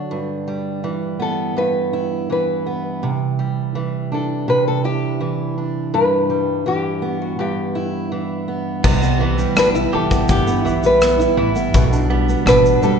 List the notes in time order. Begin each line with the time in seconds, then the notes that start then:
Already playing: D3 F#3 A3 D4 F#4
0.11 G2
0.48 G3
0.84 E3
1.19 B3 A4
1.56 G2 B4
1.93 E4
2.30 E3 B4
2.66 B3
3.03 C3
3.39 G3
3.75 E3
4.12 D4 A4
4.48 C3 B4
4.68 A4
4.84 E4 G4
5.20 E3
5.58 D4
5.94 G2 B4
6.30 G3
6.66 E3 G4
7.02 B3
7.22 F#4
7.39 G2 G4
7.75 E4
8.12 E3
8.48 B3
8.84 C2 C3 B3, kick, crash
9.02 B3, shaker
9.20 E3 B3
9.39 G3, shaker
9.56 B1 D4 B4, cross-stick, shaker
9.75 E4, shaker
9.93 C2 E3 G4 A4
10.10 B3, kick, shaker
10.28 G1 B3 G4, kick, shaker
10.47 B3, shaker
10.65 B1 E3 E4, shaker
10.83 G3 B4, shaker
11.01 B3, cross-stick, shaker
11.19 E4, shaker
11.37 A1 E3 E4
11.56 B3, shaker
11.74 B1 B2, kick, shaker
11.92 D4, shaker
12.10 G3 B3
12.29 B3, shaker
12.46 A1 B2 D4 B4, cross-stick, shaker
12.66 shaker
12.82 B1 G3 A4, shaker